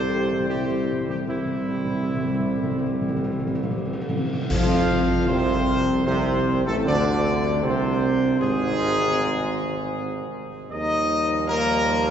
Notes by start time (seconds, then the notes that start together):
Already playing: C2 C3 G3 C5
0.03 C3
0.09 G4
0.17 C3
0.25 C3
0.32 C3
0.40 C3
0.47 C3 G3 E4 G4
0.55 C3
0.63 C3
0.70 C3
0.78 C3
0.85 C3
0.93 C3
1.01 C3
1.08 C3 G4
1.15 C3
1.23 C3 E4
1.28 C2 C3 G3 C4
1.38 C3
1.46 C3
1.54 C3
1.61 C3
1.70 C3
1.77 C3
1.85 C3
1.93 C3
2.01 C3
2.09 C3
2.17 C3
2.24 C3
2.33 C3
2.40 C3
2.48 C3
2.56 C3
2.63 C3
2.71 C3
2.79 C3
2.86 C3
2.94 C3
3.01 C3
3.09 C3
3.17 C3
3.24 C3
3.32 C3
3.40 C3
3.47 C3
3.55 C3
3.63 C3
3.71 C3
3.78 C3
3.86 C3
3.93 C3
4.02 C3
4.09 C3
4.17 C3
4.25 C3
4.33 C3
4.41 C3
4.49 F2 F3 F4 F5, concert bass drum, crash
5.28 C2 C3 C4 C5
6.06 C2 C3 C4 C5
6.66 A1 A2 A3 A4
6.85 D2 D3 D4 D5
7.62 C2 C3 C4 C5
8.40 G#1 G#2 G#3 G#4
10.69 D#2 F3 G3 D#4 D#5
11.47 A#3 A#4